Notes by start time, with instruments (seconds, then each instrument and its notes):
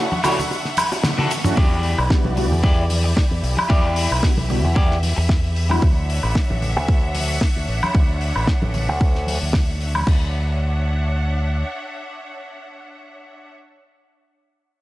Already playing: string section D4 E5 F#5 C#6
0.12 muted clean electric guitar stroke, high conga, cabasa
0.24 analog polysynth A3 C#4 D4 E4 F#4, clean electric guitar D4 E4 F#4 C#5, open hi-hat, ride, high bongo, low conga, cabasa, high woodblock, shaker
0.39 low conga, cabasa, shaker
0.50 muted clean electric guitar stroke, high bongo, cabasa, shaker
0.65 snare, cabasa
0.77 open hi-hat, ride, high conga, cabasa, high woodblock, shaker
0.92 high bongo, cabasa, shaker
1.04 snare, high tom, cabasa, shaker
1.18 clean electric guitar D4 E4 F#4 A4, high tom, high bongo, cabasa
1.31 open hi-hat, ride, cabasa, shaker
1.44 analog polysynth A3 C#4 D4 E4 F#4, muted clean electric guitar stroke, mid tom, high conga, cabasa, shaker
1.56 fingered electric bass E2, clean electric guitar E4 G4 D5, string section E4 G4 D5, kick
1.83 open hi-hat
1.98 fingered electric bass B1, high woodblock
2.10 analog polysynth G3 B3 D4 E4 F#4, kick, snare
2.25 fingered electric bass B1, high conga
2.36 analog polysynth G3 B3 D4 E4 F#4, muted clean electric guitar stroke, open hi-hat, low conga
2.51 fingered electric bass E2, low conga
2.63 clean electric guitar E4 G4 D5, kick
2.90 open hi-hat, high conga
3.04 muted clean electric guitar stroke
3.16 muted clean electric guitar stroke, kick, snare
3.31 fingered electric bass E2
3.43 fingered electric bass B1, open hi-hat
3.57 muted clean electric guitar stroke, high conga, high woodblock
3.69 fingered electric bass E2, clean electric guitar E4 G4 D5, string section E5, kick
3.96 open hi-hat
4.11 fingered electric bass B1, high woodblock
4.23 analog polysynth G3 B3 D4 E4 F#4, kick, snare
4.37 fingered electric bass B1, high conga
4.49 analog polysynth G3 B3 D4 E4 F#4, muted clean electric guitar stroke, open hi-hat, low conga
4.64 fingered electric bass E2, low conga
4.75 clean electric guitar E4 G4 D5, kick
4.91 snare
5.03 open hi-hat, high conga
5.16 fingered electric bass E2, muted clean electric guitar stroke
5.29 muted clean electric guitar stroke, kick, snare
5.56 open hi-hat
5.69 analog polysynth G3 B3 D4 E4 F#4, muted clean electric guitar stroke, high conga, high woodblock
5.82 fingered electric bass D2, string section D4 C#5 F#5, kick
6.10 open hi-hat
6.23 fingered electric bass A1, high woodblock
6.35 kick, snare
6.50 fingered electric bass A1, high conga
6.62 open hi-hat, low conga
6.76 fingered electric bass D2, low conga
6.88 kick
7.15 open hi-hat, high conga
7.41 kick, snare
7.56 fingered electric bass D2
7.68 fingered electric bass A1, open hi-hat
7.83 high conga, high woodblock
7.95 fingered electric bass D2, kick
8.21 open hi-hat
8.36 fingered electric bass A1, high woodblock
8.47 kick, snare
8.62 fingered electric bass A1, high conga
8.74 open hi-hat, low conga
8.88 fingered electric bass D2, low conga
9.01 kick
9.15 snare
9.27 open hi-hat, high conga
9.42 fingered electric bass D2
9.53 kick, snare
9.81 open hi-hat
9.95 high conga, high woodblock
10.07 fingered electric bass D2, string section D4 C#5 E5 F#5, kick, crash